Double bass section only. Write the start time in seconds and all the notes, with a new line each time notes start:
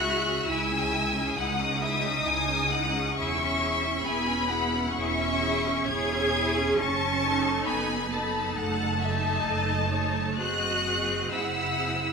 Already playing: C#2
0.46 C#2
1.36 C#2
2.24 C#2
3.16 E1
4.05 E1
4.94 E1
5.88 E1
6.78 F#1
7.68 F#1
8.56 F#1
9.43 F#1
10.40 F#1
11.31 F#1